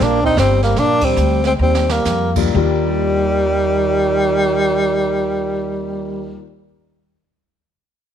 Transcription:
0.00 A#1 A#3 D4, brush sweep, kick, snare
0.24 C4 D#4, kick
0.37 G1 G3 C4, kick, snare, hi-hat pedal
0.63 G3 A#3, snare
0.76 A#1 A#3 D4, brush sweep, kick, snare
1.01 G3 C4, kick, ride
1.16 D2, hi-hat pedal
1.44 G#3 C4, snare
1.59 D#2 G3 C4
1.75 snare
1.89 G3 A#3, snare
2.05 F2, snare, hi-hat pedal
2.36 D#2 G3 A#3 D4 F4, kick, crash
2.54 D#2 D#3 G3 D4 F4

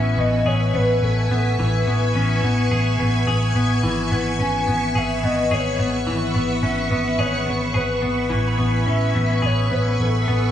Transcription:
Already playing: A1 E3 B3 C#4 B4 E5 G#5 C#6
0.18 A1 B3 D#5
0.46 A1 G#4 C#5
0.74 A1 B3 B4
1.02 A1 A4
1.30 A1 B3
1.59 A1 E3
1.87 A1 B3
2.15 A1 C#4
2.43 A1 B3
2.71 A1 G#4
2.99 A1 B3
3.27 A1 G#4
3.55 A1 B3
3.83 G#1 E3 B4 E5
4.12 G#1 B3
4.39 G#1 C#4 G#5
4.67 G#1 B3
4.95 G#1 G#4 E5
5.24 G#1 B3 D#5
5.51 G#1 G#4 C#5
5.79 G#1 B3
6.07 G#1 E3 F#5
6.34 G#1 B3
6.63 G#1 C#4 E5
6.91 G#1 B3
7.19 G#1 G#4 C#5
7.46 G#1 B3
7.74 G#1 G#4 B4
8.02 G#1 B3
8.30 A1 E3 E5 G#5
8.48 B5
8.58 A1 B3
8.86 A1 C#4 E5
9.15 A1 B3
9.42 A1 G#4 C#5
9.71 A1 B3 B4
10.00 A1 A4
10.28 A1 B3

